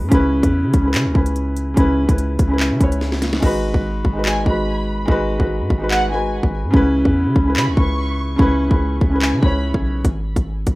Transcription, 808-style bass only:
0.02 0.11 G#2 loud
0.12 0.42 C#2 loud
0.43 0.65 E2 loud
0.64 0.73 C#3 loud
0.74 0.96 C#2 loud
0.94 1.07 C#3 loud
1.05 1.15 C#2 loud
1.15 1.75 C#2 loud
1.77 2.07 C#2 loud
2.09 2.38 C#2 loud
2.39 2.72 C#2 loud
2.71 2.80 C#3 loud
2.81 3.40 C#2 loud
3.43 3.73 G#1 loud
3.74 4.03 G#1 loud
4.05 4.44 G#1 loud
4.46 5.06 G#1 loud
5.08 5.39 G#1 loud
5.40 5.62 G#1 loud
5.61 5.70 G#2 loud
5.70 6.40 G#1 loud
6.43 6.65 G#1 loud
6.64 6.73 G#2 loud
6.74 7.04 C#2 loud
7.05 7.28 E2 loud
7.26 7.35 C#3 loud
7.36 7.58 C#2 loud
7.56 7.69 C#3 loud
7.67 7.77 C#2 loud
7.77 8.37 C#2 loud
8.39 8.70 C#2 loud
8.71 9.00 C#2 loud
9.01 9.34 C#2 loud
9.33 9.42 C#3 loud
9.43 9.73 C#2 loud
9.74 10.03 B1 loud
10.05 10.35 G#1 loud
10.36 10.66 G#1 loud
10.67 10.75 G#1 loud

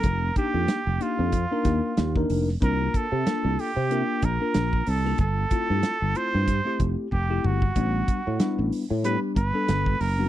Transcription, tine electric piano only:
0.36 0.80 A#3 medium
0.36 0.80 D4 medium
0.36 0.80 D#4 medium
0.36 0.81 G4 medium
1.00 1.32 A#3 medium
1.00 1.33 D4 medium
1.00 1.33 D#4 medium
1.00 1.33 G4 medium
1.51 1.92 A#3 medium
1.51 1.92 D4 medium
1.51 1.93 D#4 medium
1.51 1.93 A#4 medium
2.16 2.47 A#3 medium
2.16 2.48 D4 medium
2.16 2.48 D#4 medium
2.16 2.48 A#4 loud
2.61 3.05 A#3 medium
2.61 3.05 D4 medium
2.61 3.06 F4 medium
2.61 3.06 A#4 medium
3.26 3.70 A#3 medium
3.26 3.70 D4 medium
3.26 3.70 F4 medium
3.26 3.71 A4 medium
3.90 4.22 A#3 medium
3.90 4.23 D4 medium
3.90 4.23 F4 medium
3.90 4.23 A#4 medium
4.40 4.82 A#3 medium
4.40 4.82 D4 medium
4.40 4.82 F4 medium
4.40 4.83 A#4 medium
5.05 5.19 A#3 medium
5.05 5.20 D4 medium
5.05 5.20 F4 medium
5.05 5.20 A4 medium
5.51 5.95 A3 medium
5.51 5.95 C4 medium
5.51 5.95 E4 medium
5.51 5.95 F4 medium
6.15 6.47 A3 medium
6.15 6.48 C4 medium
6.15 6.48 E4 medium
6.15 6.48 F4 medium
6.65 7.06 A3 medium
6.65 7.07 C4 medium
6.65 7.07 E4 medium
6.65 7.07 G4 medium
7.29 7.61 A3 medium
7.29 7.61 C4 medium
7.29 7.62 E4 medium
7.29 7.62 G4 medium
7.76 8.19 G3 medium
7.76 8.20 B3 medium
7.76 8.20 D4 medium
7.76 8.20 F#4 medium
8.40 8.84 G3 medium
8.40 8.84 B3 medium
8.40 8.84 D4 medium
8.40 8.84 E4 medium
9.04 9.36 G3 medium
9.04 9.36 B3 medium
9.04 9.36 D4 medium
9.04 9.37 G4 medium
9.53 9.95 G3 medium
9.53 9.95 B3 medium
9.53 9.95 D4 medium
9.53 9.96 A4 medium
10.18 10.29 G3 medium
10.18 10.29 B3 medium
10.18 10.29 D4 medium
10.18 10.29 F#4 medium

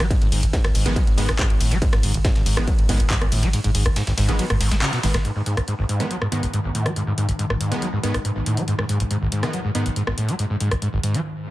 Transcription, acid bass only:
0.00 0.06 G#3 medium
0.10 0.17 G#2 medium
0.21 0.27 G#2 medium
0.32 0.41 G#2 medium
0.43 0.46 G#1 loud
0.53 0.59 G#2 medium
0.64 0.70 G#1 loud
0.75 0.87 G#2 medium
0.86 0.92 F#3 loud
0.96 1.02 F#3 medium
1.07 1.13 G#2 medium
1.18 1.27 G#2 medium
1.29 1.32 G#1 loud
1.39 1.45 G#2 medium
1.50 1.56 G#1 medium
1.60 1.73 A2 medium
1.71 1.77 G#3 medium
1.82 1.88 G#2 medium
1.93 1.99 G#2 medium
2.03 2.12 G#2 medium
2.14 2.18 G#1 loud
2.25 2.31 G#2 medium
2.36 2.41 G#1 loud
2.46 2.59 G#2 medium
2.57 2.63 F#3 loud
2.68 2.74 F#3 medium
2.79 2.84 G#2 medium
2.89 2.98 G#2 medium
3.00 3.03 G#1 loud
3.10 3.16 G#2 medium
3.21 3.27 G#1 medium
3.32 3.44 A2 medium
3.43 3.49 G#3 medium
3.53 3.59 G#2 medium
3.64 3.70 G#2 medium
3.75 3.84 G#2 medium
3.85 3.89 G#1 loud
3.96 4.02 G#2 medium
4.07 4.13 G#1 loud
4.17 4.30 G#2 medium
4.29 4.34 F#3 loud
4.39 4.45 F#3 medium
4.50 4.56 G#2 medium
4.60 4.70 G#2 medium
4.71 4.75 G#3 medium
4.82 4.91 C#3 loud
4.93 4.99 B2 medium
5.03 5.07 G#2 medium
5.14 5.18 G#2 loud
5.25 5.31 G#2 medium
5.36 5.42 G#2 medium
5.46 5.55 G#2 medium
5.57 5.61 G#1 loud
5.68 5.74 G#2 medium
5.79 5.84 G#1 loud
5.89 6.01 G#2 medium
6.00 6.06 F#3 loud
6.11 6.17 F#3 medium
6.22 6.27 G#2 medium
6.32 6.41 G#2 medium
6.43 6.46 G#1 medium
6.54 6.59 G#2 medium
6.64 6.70 G#1 medium
6.75 6.87 A2 medium
6.86 6.92 G#3 medium
6.96 7.02 G#2 medium
7.07 7.13 G#2 medium
7.18 7.27 G#2 medium
7.29 7.32 G#1 loud
7.39 7.45 G#2 medium
7.50 7.56 G#1 loud
7.60 7.73 G#2 medium
7.71 7.77 F#3 loud
7.82 7.88 F#3 medium
7.93 7.99 G#2 medium
8.03 8.12 G#2 medium
8.14 8.18 G#1 loud
8.25 8.31 G#2 medium
8.36 8.42 G#1 medium
8.46 8.59 A2 medium
8.57 8.63 G#3 medium
8.68 8.74 G#2 medium
8.79 8.84 G#2 medium
8.89 8.98 G#2 medium
9.00 9.04 G#1 loud
9.11 9.17 G#2 medium
9.22 9.27 G#1 loud
9.32 9.45 G#2 medium
9.43 9.49 F#3 loud
9.54 9.60 F#3 medium
9.65 9.70 G#2 medium
9.75 9.84 G#2 medium
9.86 9.89 G#1 loud
9.96 10.02 G#2 medium
10.07 10.13 G#1 medium
10.18 10.30 A2 medium
10.29 10.34 G#3 medium
10.39 10.45 G#2 medium
10.50 10.56 G#2 medium
10.61 10.70 G#2 medium
10.72 10.75 G#1 loud
10.82 10.88 G#2 medium
10.93 10.99 G#1 loud
11.03 11.16 G#2 medium
11.14 11.20 F#3 loud

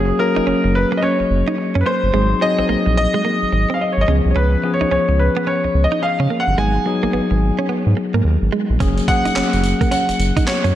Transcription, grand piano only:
0.00 0.17 G#4 medium
0.19 0.77 A#4 loud
0.75 0.98 B4 medium
0.97 1.03 D#5 medium
1.03 1.77 C#5 medium
1.81 1.86 B4 medium
1.86 2.43 C5 loud
2.42 2.96 D#5 loud
2.97 3.70 D#5 loud
3.74 3.81 F5 medium
3.81 3.92 D#5 medium
3.92 4.01 C#5 medium
4.01 4.08 D#5 medium
4.31 4.36 C#5 medium
4.36 4.71 B4 medium
4.74 4.90 C#5 medium
4.92 5.20 C#5 medium
5.19 5.48 B4 medium
5.47 5.85 C#5 medium
5.84 6.03 D#5 medium
6.03 6.41 F5 medium
6.40 6.57 F#5 loud
6.58 7.65 G#5 medium
9.08 9.90 F#5 loud
9.91 10.49 F#5 loud
10.47 10.75 C#5 medium

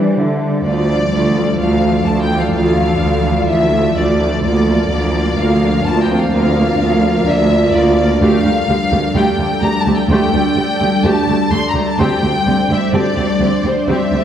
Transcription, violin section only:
0.64 1.55 D5 medium
1.60 2.06 F5 soft
2.06 2.23 A5 medium
2.22 2.38 G5 soft
2.39 2.54 F5 soft
2.55 3.47 F5 medium
3.49 3.95 E5 medium
3.96 4.43 D5 medium
4.44 5.36 D5 medium
5.38 5.85 F5 medium
5.85 6.01 A5 medium
6.03 6.18 G5 medium
6.19 6.32 F5 medium
6.33 7.26 F5 medium
7.27 7.74 E5 medium
7.74 8.21 D5 medium
8.22 9.14 F5 medium
9.17 9.64 G5 medium
9.63 9.79 A#5 medium
9.80 9.95 A5 medium
9.96 10.08 G5 medium
10.09 11.02 G5 medium
11.05 11.52 A5 medium
11.53 11.68 C6 medium
11.69 11.84 A#5 medium
11.86 12.00 A5 medium
12.01 12.71 G5 medium
12.72 12.95 E5 medium
12.94 13.64 D5 medium
13.66 13.89 C5 soft
13.90 14.24 E5 medium

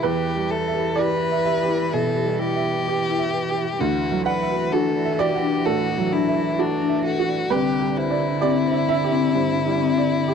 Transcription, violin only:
0.03 0.52 G4 medium
0.51 1.00 A4 medium
0.98 1.95 B4 medium
1.93 2.41 A4 medium
2.39 3.82 G4 medium
3.80 4.25 F#4 medium
4.26 4.75 B4 medium
4.73 5.21 A4 medium
5.19 5.67 G4 medium
5.65 6.14 F#4 medium
6.12 6.61 E4 medium
6.60 7.04 D4 medium
7.05 7.53 F#4 medium
7.51 7.99 G4 medium
7.97 10.34 E4 medium

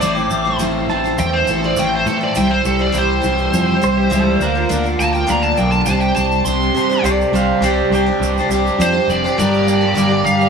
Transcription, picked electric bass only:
0.01 0.25 A1 medium
0.31 0.54 A1 medium
0.60 0.83 A1 medium
0.89 1.13 A1 medium
1.18 1.42 E2 medium
1.47 1.71 A1 medium
1.77 2.01 A1 medium
2.06 2.29 A2 medium
2.36 2.59 C2 medium
2.65 2.88 C2 medium
2.94 3.18 C2 loud
3.24 3.47 C2 medium
3.53 3.76 F2 medium
3.83 4.06 C2 medium
4.11 4.34 C#2 medium
4.39 4.63 D2 medium
4.70 4.93 D2 medium
4.99 5.22 D2 medium
5.28 5.52 D2 loud
5.57 5.81 B1 medium
5.87 6.10 C2 loud
6.16 6.40 C2 medium
6.45 6.68 C2 medium
6.74 6.98 C3 loud
7.03 7.22 C2 loud
7.32 7.50 C2 medium
7.61 7.79 C2 loud
7.90 8.09 C2 medium
8.20 8.38 C2 loud
8.49 8.67 C2 medium
8.78 8.97 F2 medium
9.07 9.26 F1 medium
9.38 9.95 G1 medium
9.96 10.24 G1 medium
10.25 10.49 G1 medium

